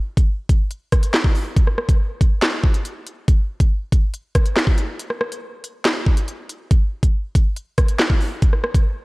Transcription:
0.17 kick, closed hi-hat
0.49 kick, closed hi-hat
0.71 closed hi-hat
0.92 kick, cross-stick, closed hi-hat
1.03 closed hi-hat
1.14 snare, clap
1.24 kick
1.35 open hi-hat
1.57 kick, closed hi-hat
1.67 cross-stick
1.78 cross-stick
1.89 kick, closed hi-hat
2.21 kick, closed hi-hat
2.42 snare, clap, closed hi-hat
2.64 kick
2.74 closed hi-hat
2.85 closed hi-hat
3.07 closed hi-hat
3.28 kick, closed hi-hat
3.60 kick, closed hi-hat
3.92 kick, closed hi-hat
4.14 closed hi-hat
4.35 kick, cross-stick, closed hi-hat
4.46 closed hi-hat
4.57 snare, clap
4.67 kick
4.78 closed hi-hat
4.99 closed hi-hat
5.10 cross-stick
5.21 cross-stick
5.32 closed hi-hat
5.64 closed hi-hat
5.85 snare, clap, closed hi-hat
6.07 kick
6.17 closed hi-hat
6.28 closed hi-hat
6.49 closed hi-hat
6.71 kick, closed hi-hat
7.03 kick, closed hi-hat
7.35 kick, closed hi-hat
7.56 closed hi-hat
7.78 kick, cross-stick, closed hi-hat
7.88 closed hi-hat
7.99 snare, clap
8.10 kick
8.21 open hi-hat
8.42 kick, closed hi-hat
8.53 cross-stick
8.64 cross-stick
8.74 kick, closed hi-hat

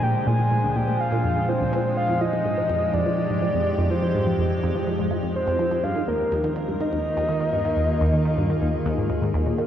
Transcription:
Already playing: A#2 F3 G#3 D4 C5
0.03 A#2 G5
0.27 A#2 G#5
0.39 A#2
0.51 A#2
0.64 D2
0.76 A#2 G5
0.88 A#2
1.00 F5
1.12 A#2
1.24 F2
1.36 D3
1.49 F3 C5
1.61 D2
1.73 F3
1.97 F2 D#4 G4 F5
2.09 F2
2.21 F3 D#5
2.33 F3
2.45 G#2
2.58 F3
2.70 F2
2.94 F2 D5
3.06 F3
3.18 F3
3.30 G#2
3.42 F3
3.54 F2
3.78 F2
3.90 F3 C5
4.03 F3
4.15 G#2
4.27 F3
4.39 F2
4.63 F2
4.75 F3
4.87 F3
4.99 G#2
5.11 F3
5.23 F2
5.36 C5
5.47 F2
5.59 F3
5.72 F3
5.84 D#2 G2 D#3 A#3 F4 A#4 F5
5.96 D#3
6.08 D#2 A#4
6.32 D#2
6.44 D#3
6.56 D#3
6.68 G2
6.81 D#3 D#5
6.93 D#2
7.17 D#2
7.29 D#3
7.41 D#3
7.53 G2
7.65 D#3
7.77 D#2 G#4
8.01 D#2
8.14 D#3
8.26 D#3
8.38 G2
8.50 D#3
8.62 D#2
8.86 D#2
8.98 G#2
9.10 D#2
9.22 G#2
9.34 D#2
9.46 A#2
9.58 D#3

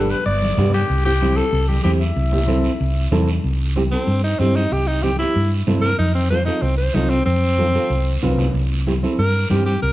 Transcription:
Already playing: G1 B3 D4 G4 A4
0.10 B4, short guiro
0.26 G1 D5, long guiro
0.42 high conga
0.57 G2 B3 D4 G4, high conga, low conga, short guiro
0.74 G4, short guiro
0.89 C2, long guiro
1.05 C4 E4 G4
1.21 C4 E4 G4, high conga, short guiro
1.36 A4, short guiro
1.53 C2, long guiro
1.68 G4, high conga
1.84 E2 C4 E4 G4, high conga, short guiro
2.01 E4, short guiro
2.16 C2, long guiro
2.32 C4 E4 G4, low conga
2.48 C4 E4 A4, high conga, short guiro
2.64 short guiro
2.81 C2, long guiro
3.12 E2 C4 E4 A4, high conga, low conga, short guiro
3.28 short guiro
3.44 C2, high conga, long guiro
3.76 C4 E4 G4, high conga, short guiro
3.91 C4 E4 A4, short guiro
4.07 G2, high conga, long guiro
4.24 D#4
4.39 G2 C4 E4 G4, high conga, short guiro
4.56 D#4, short guiro
4.72 C2 G4, high conga, long guiro
4.87 D#4
5.03 C4 E4 G4, high conga, short guiro
5.19 C4 E4 G4, short guiro
5.35 G2, high conga, long guiro
5.67 G2 C4 E4 A4, high conga, low conga, short guiro
5.82 A#4, short guiro
5.99 F2 D#4, high conga, long guiro
6.15 C4
6.30 C4 F4 A4 C5, high conga, short guiro
6.46 C4 D#4 F4 A4, short guiro
6.62 C2 C4, high conga, long guiro
6.77 C5
6.94 C2 C4 D#4 F4 A4, high conga, short guiro
7.10 C4, short guiro
7.25 F2 C4, high conga, long guiro
7.58 C4 F4 A4, high conga, short guiro
7.74 C4 F4 A4, short guiro
7.90 C2, high conga, long guiro
8.22 C2 C4 F4 B4, high conga, low conga, short guiro
8.38 low conga, short guiro
8.54 C2, high conga, long guiro
8.87 C4 E4 G4, high conga, short guiro
9.03 C4 E4 A4, short guiro
9.19 G2 A#4, high conga, long guiro
9.50 G2 C4 E4 G4, high conga, short guiro
9.66 G4, short guiro
9.82 C2 A#4, high conga, long guiro

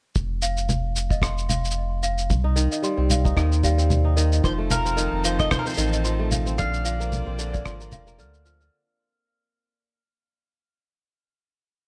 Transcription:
0.15 F1, kick, cabasa
0.42 F5, cabasa
0.57 cabasa
0.69 low conga, cabasa
0.96 cabasa
1.11 D#5, kick, cabasa
1.22 C6, kick, cross-stick, cabasa
1.38 cabasa
1.49 F5, low conga, cabasa
1.65 cabasa
1.71 cabasa
2.03 F5, cabasa
2.18 cabasa
2.30 C2, kick, low conga, cabasa
2.44 D#4
2.56 D#3, cabasa
2.72 D#5, cabasa
2.83 G3 C6, cabasa
2.97 C2 C4
3.10 F5, low conga, cabasa
3.25 D#4, kick, cabasa
3.36 D#2 D#3, kick, cross-stick, cabasa
3.52 cabasa
3.63 G3 F5, kick, cabasa
3.78 C4, cabasa
3.90 low conga, cabasa
4.05 D#4
4.17 D#3, cabasa
4.32 D#5, cabasa
4.43 F1 F3 C4 D#4 C5 A5 C6, kick, cabasa
4.58 A3
4.71 A#4 F5, low conga, cabasa
4.85 C4, cabasa
4.97 D#3, cabasa
5.13 F1
5.24 F3 C5 F5, cabasa
5.39 A3 D#5, kick, cabasa
5.51 C5, kick, cross-stick, low conga, cabasa
5.59 A#4
5.66 C4 C5, cabasa
5.69 cabasa
5.74 D#3, cabasa
5.78 A1, cabasa
5.83 cabasa
5.87 cabasa
5.93 D#5, cabasa
6.05 F3 C6, cabasa
6.19 A3
6.31 F5, low conga, cabasa
6.46 C4, cabasa
6.58 A#1 D3 A#3 F4 C5 D5 F5, kick, cabasa
6.73 cabasa
6.85 F3 F5, cabasa
7.00 A#3, cabasa
7.12 low conga, cabasa
7.26 A#1 C4
7.39 D3, cabasa
7.53 D5, kick, cabasa
7.66 G#1 F3 C6, kick, cross-stick, cabasa
7.80 A#3, cabasa
7.92 F1 C4 F5, kick, low conga, cabasa
8.07 A#3, cabasa
8.18 D2 D3 F6, cabasa
8.34 cabasa
8.45 F3 F6, cabasa
8.60 D3 F6, cabasa

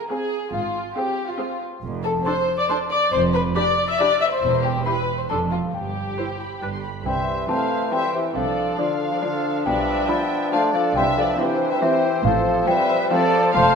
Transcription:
0.10 C4 G#4 F5 G#5
0.53 G#1 G#2 F4 F5
0.96 C4 G4 G#4 F5 G5
1.28 F4 F5
1.39 C4 G#4 F5
1.83 F1 F2
2.03 A4 A5
2.24 D4 A4 C5 A5 C6
2.58 D5 D6
2.69 D4 A4 C5 A5 C6
2.90 D5 D6
3.12 F1 F2 C5 C6
3.34 B4 B5
3.55 D4 G4 D5 B5 D6
3.88 E5 E6
3.99 D4 G4 D5 B5 D6
4.21 E5 E6
4.30 C5 C6
4.42 E1 E2
4.63 G4 G5
4.85 E4 G4 B4 B5 C6
5.18 C5 C6
5.30 F1 F2 D4 A4 A5 C6
5.51 F4 F5
5.73 G1 G2 G4 G5
6.17 E4 C5 G5
6.39 B5
6.61 G1 G2 D4 B4
6.73 C6
6.83 B5
7.05 C2 C3 E3 G3 C4 C5 E5 G5
7.48 E3 A3 C4 E4 C5 F5 A5
7.92 E3 G3 C4 G4 C5 E5 G5
8.14 E3 G4 C5 E5
8.35 C2 C3 F3 D4 A4 D5 F5
8.79 D3 F3 D4 F4 A4 D5 F5
9.12 F3 A4 D5 F5
9.22 D3 F3 D4 F4 A4 D5
9.66 B1 B2 G3 B4 D5 E5 G5
10.08 F3 B3 D4 D5 G5 B5
10.52 F3 A3 D4 C5 D5 F5 A5
10.74 F3 A4 D5 F5
10.95 C2 C3 E3 G3 C5 E5 G5
11.17 F3 A4 D5 F5
11.39 E3 C4 G4 C5 E5
11.71 G3 B4 E5 G5
11.82 E3 C4 G4 C5 E5
12.25 A1 A2 F3 A4 C5 F5
12.66 F3 G3 C4 B4 C5 E5 G5
13.05 G5
13.10 F3 C4 A4 C5 D5 F5
13.53 F1 F2 A3 C4 C5 F5 A5

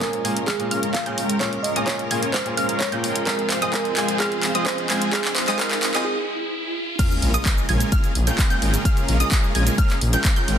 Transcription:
Already playing: A#2 G#3 A#3 C#4 F4 G#4 A#4 D#5 D#6, riser
0.00 A#4, kick, clap, closed hi-hat
0.13 closed hi-hat
0.24 A#2 G#3 A#3 C#4 F4 G#4 A#4 G#5 G#6, open hi-hat
0.37 closed hi-hat
0.46 G#3 G#4 F6, kick, clap, closed hi-hat
0.59 A#2 A#3 C#4 F4 G#4, closed hi-hat
0.71 G#3 C#4 F4 A#4 F5 F6, open hi-hat
0.83 closed hi-hat
0.93 F5, kick, clap, closed hi-hat
1.06 A#2 G#3 A#3 C#4 F4 G#4 A#4 G5 G6, closed hi-hat
1.18 open hi-hat
1.30 closed hi-hat
1.40 A#2 A#3 C#4 F4 G#4 A#4 C#5 F5 F6, kick, clap, closed hi-hat
1.53 closed hi-hat
1.63 D#5, open hi-hat
1.76 A#2 G#3 A#3 C#4 F4 G#4 A#4 D#5 D#6, closed hi-hat
1.86 C#5, kick, clap, closed hi-hat
1.99 closed hi-hat
2.10 A#2 G#3 A#3 C#4 F4 G#4 A#4 G#5 G#6, open hi-hat
2.23 closed hi-hat
2.33 G#3 F4 A#4 C5 F5 F6, kick, clap, closed hi-hat
2.45 A#2 A#3 C#4 F4 G#4, closed hi-hat
2.57 G#3 C#4 F4 A#4 F5 F6, open hi-hat
2.69 closed hi-hat
2.79 C#5, kick, clap, closed hi-hat
2.92 A#2 G#3 A#3 C#4 F4 G#4 A#4 G5 G6, closed hi-hat
3.04 open hi-hat
3.16 closed hi-hat
3.26 F3 G#3 C4 F4 G#4 A#4 F5 F6, kick, clap, closed hi-hat
3.39 closed hi-hat
3.49 C5, clap, open hi-hat
3.61 G#3 C4 F4 G#4 C5 D#5 D#6, closed hi-hat
3.72 A#4, kick, clap, closed hi-hat
3.85 closed hi-hat
3.96 G#3 C4 F4 G#4 C5 G#5 G#6, clap, open hi-hat
4.08 closed hi-hat
4.18 G#3 C4 F4 G#4 F6, kick, clap, closed hi-hat
4.32 closed hi-hat
4.43 clap, open hi-hat
4.54 G#3 C4 F4 G#4 C5 D#5 D#6, closed hi-hat
4.65 C5, kick, clap, closed hi-hat
4.78 closed hi-hat
4.89 G#3 C4 F4 G#4 C5 G#5 G#6, clap, open hi-hat
5.02 closed hi-hat
5.12 G#3 C4 F4 G#4 C5 F5 F6, kick, clap, closed hi-hat
5.25 clap, closed hi-hat
5.35 C5, clap, open hi-hat
5.47 G#3 C4 F4 G#4 C5 D#5 D#6, clap, closed hi-hat
5.58 G#3 C4 F4 G#4 A#4 F6, kick, clap, closed hi-hat
5.71 clap, closed hi-hat
5.83 clap, open hi-hat
5.94 G#3 C4 F4 G#4 C5 D#5 D#6, clap, closed hi-hat
6.04 G#4
6.99 C#3 G#3 A#3 C#4 F4 G#4 A#4 F5 F6, kick, closed hi-hat, crash, sub drop, cabasa
7.11 cabasa
7.22 A#1, open hi-hat
7.34 G#3 C#4 F4 A#4 D#5 D#6, closed hi-hat, cabasa
7.46 kick, clap, closed hi-hat, cabasa
7.58 cabasa
7.69 A#1 G#3 C#4 F4 A#4 G#5 G#6, open hi-hat
7.80 closed hi-hat, cabasa
7.92 F4 A#4 F5 F6, kick, closed hi-hat, cabasa
8.04 closed hi-hat, cabasa
8.15 A#1, open hi-hat
8.27 G#3 C#4 F4 A#4 G5 G6, closed hi-hat, cabasa
8.39 kick, clap, closed hi-hat, cabasa
8.50 G#3 C#4 F4 A#4 G5 G6, closed hi-hat, cabasa
8.62 G#1, open hi-hat
8.74 closed hi-hat, cabasa
8.85 G#3 C#4 F4 A#4 F5 F6, kick, closed hi-hat, cabasa
8.97 closed hi-hat, cabasa
9.08 A#1, open hi-hat
9.20 G#3 C#4 F4 A#4 D#5 D#6, closed hi-hat, cabasa
9.32 kick, clap, closed hi-hat, cabasa
9.44 cabasa
9.55 A#1 G#3 C#4 F4 A#4 G#5 G#6, open hi-hat
9.67 closed hi-hat, cabasa
9.78 G#3 C#4 A#4 F6, kick, closed hi-hat, cabasa
9.90 clap, closed hi-hat, cabasa
10.01 A#1, open hi-hat
10.13 G#3 C#4 F4 A#4 G5 G6, closed hi-hat, cabasa
10.25 kick, clap, closed hi-hat, cabasa
10.36 G#3 C#4 F4 A#4 G5 G6, closed hi-hat, cabasa
10.48 G#1, open hi-hat

